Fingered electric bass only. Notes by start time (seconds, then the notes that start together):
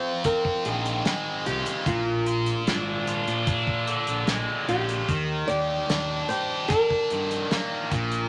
0.66 A#1
1.47 C2
1.87 A#1
2.67 G#1
3.28 A#2
4.08 A#1
4.28 A#1
4.68 A#1
5.09 D#2
5.49 D#2
5.90 D#2
7.11 G2
7.91 A#1